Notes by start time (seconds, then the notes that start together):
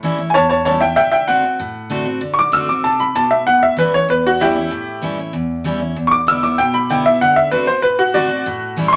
Already playing: A2
0.03 E3 G3 C#4 E4
0.19 C#4 E4
0.30 G#5
0.34 E2 C#5 A5
0.50 C#5 A5
0.65 E3 G3 C#4 E4 C#5 A5
0.81 C#4 E4 E5 G5
0.96 D3 E5 G5
1.12 E5 G5
1.28 D3 A3 C4 F#4 F#5
1.43 C4 F#4
1.60 A2
1.90 D3 A3 C4 F#4
2.05 C4 F#4
2.21 D3
2.34 C#6
2.39 D6
2.52 D3 A3 C4 F#4 E6
2.68 C4 F#4 D6
2.84 C3 A5
3.00 B5
3.15 B2 A5
3.31 E5
3.47 A2 F#5
3.63 E5
3.77 E3 G3 C#4 E4 B4
3.93 C#4 E4 C#5
4.09 E2 B4
4.26 F#4
4.40 E3 G3 C#4 E4 G4
4.55 C#4 E4
4.71 A2
5.02 E3 G3 C#4 E4
5.18 C#4 E4
5.33 E2
5.64 E3 G3 C#4 E4
5.80 C#4 E4
5.96 E2
6.07 C#6
6.11 D6
6.27 D3 G#3 B3 E4 E6
6.43 B3 E4 D6
6.58 B2 G5
6.74 B5
6.90 D3 G#3 B3 E4 G5
7.05 B3 E4 E5
7.21 D3 F#5
7.36 E5
7.51 D3 A3 C4 F#4 B4
7.67 C4 F#4 C5
7.82 A2 B4
7.99 F#4
8.14 D3 A3 C4 F#4 D5
8.30 C4 F#4
8.46 A2
8.77 E3 G3 C#4 E4
8.88 E4 C6
8.93 C#6